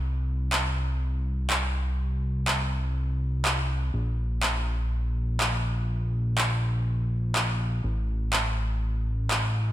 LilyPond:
<<
  \new Staff \with { instrumentName = "Analog synth bass" } { \clef bass \time 4/4 \key bes \lydian \tempo 4 = 123 c,1~ | c,1 | bes,,1~ | bes,,1 |
a,,1 | }
  \new DrumStaff \with { instrumentName = "Drums" } \drummode { \time 4/4 r4 hc4 r4 hc4 | r4 hc4 r4 hc4 | r4 hc4 r4 hc4 | r4 hc4 r4 hc4 |
r4 hc4 r4 hc4 | }
>>